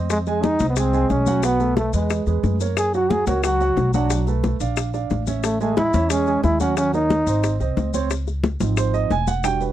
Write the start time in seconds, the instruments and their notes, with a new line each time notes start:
Already playing: upright bass F2, grand piano C4 C5 D#5
0.10 trombone G#3, high bongo, high conga, maracas
0.26 grand piano G#3 G#4 G#5, trombone G#3, high bongo, high conga, maracas
0.43 trombone D#4, high bongo, high conga, maracas
0.59 upright bass C2, grand piano C4 C5 D#5, high conga, maracas
0.70 trombone B3
0.76 grand piano G#3 G#4 G#5, trombone C4, high bongo, high conga, maracas
0.93 grand piano G#3 G#4 G#5, high bongo, high conga, maracas
1.10 upright bass B1, trombone C#4, high bongo, low bongo, high conga, maracas
1.26 grand piano F#3 F#4 F#5, high bongo, high conga, maracas
1.43 grand piano F#3 F#4 F#5, trombone B3, high bongo, high conga, maracas
1.60 grand piano A3 A4 B4, high bongo, high conga, maracas
1.77 trombone A3, high bongo, high conga, maracas
1.93 upright bass E2, grand piano G#3 G#4 B4, trombone G#3, high conga, maracas
2.10 high bongo, high conga, maracas
2.27 upright bass E2, grand piano G#3 G#4 B4, high bongo, high conga, maracas
2.43 upright bass F#2, high bongo, low bongo, high conga, maracas
2.60 grand piano A#3 A#4 C#5, high bongo, maracas
2.77 trombone G#4, high bongo, high conga, maracas
2.94 grand piano F#3 F#4 F#5, trombone F#4, high bongo, high conga, maracas
3.10 trombone G#4, high bongo, high conga, maracas
3.27 upright bass C#2, grand piano A#3 A#4 C#5, trombone F#4, high conga, maracas
3.44 grand piano F#3 F#4 F#5, trombone F#4, high bongo, high conga, maracas
3.60 grand piano F#3 F#4 F#5, high bongo, high conga, maracas
3.77 upright bass B1, high bongo, low bongo, high conga, maracas
3.94 grand piano F#3 F#4 F#5, trombone D4, high bongo, high conga, maracas
4.10 grand piano F#3 F#4 F#5, high bongo, high conga, maracas
4.27 grand piano A3 A4 B4, high bongo, high conga, maracas
4.44 high bongo, high conga, maracas
4.60 upright bass A#1, grand piano D4 D5 F5, high conga, maracas
4.77 high bongo, high conga, maracas
4.94 grand piano D4 D5 F5, high bongo, high conga, maracas
5.10 upright bass A1, high bongo, low bongo, high conga, maracas
5.27 grand piano C#4 C#5 E5, high bongo, high conga, maracas
5.44 trombone A3, high bongo, high conga, maracas
5.60 grand piano G#3 G#4 G#5, trombone A3, high bongo, high conga, maracas
5.77 trombone E4, high bongo, high conga, maracas
5.94 upright bass E2, grand piano C#4 C#5 E5, high conga, maracas
6.10 grand piano G#3 G#4 G#5, trombone C#4, high bongo, high conga, maracas
6.27 grand piano G#3 G#4 G#5, high bongo, high conga, maracas
6.43 upright bass D#2, trombone E4, high bongo, low bongo, high conga, maracas
6.60 grand piano F#3 F#4 F#5, trombone C#4, high bongo, high conga, maracas
6.76 grand piano F#3 F#4 F#5, trombone C#4, high bongo, high conga, maracas
6.93 grand piano A#3 A#4 C#5, trombone D#4, high bongo, high conga, maracas
7.10 high bongo, high conga, maracas
7.27 upright bass G#1, grand piano C4 C5 D#5, high conga, maracas
7.44 high bongo, high conga, maracas
7.60 upright bass C2, grand piano C4 C5 D#5, high bongo, high conga, maracas
7.77 upright bass C#2, high bongo, low bongo, high conga, maracas
7.94 grand piano C4 C5 C#5, high bongo, high conga, maracas
8.11 high bongo, high conga, maracas
8.27 high bongo, high conga, maracas
8.44 high bongo, high conga, maracas
8.60 upright bass G#1, grand piano F3 C4 D#4, high conga, maracas
8.77 grand piano C5, high bongo, high conga, maracas
8.94 grand piano D#5, high bongo, high conga, maracas
9.10 upright bass E1, grand piano G#5, high bongo, low bongo, high conga, maracas
9.27 grand piano F#5, high bongo, high conga, maracas
9.44 grand piano G3 D4 F#4 G5, high bongo, high conga, maracas
9.61 grand piano B4, high bongo, high conga, maracas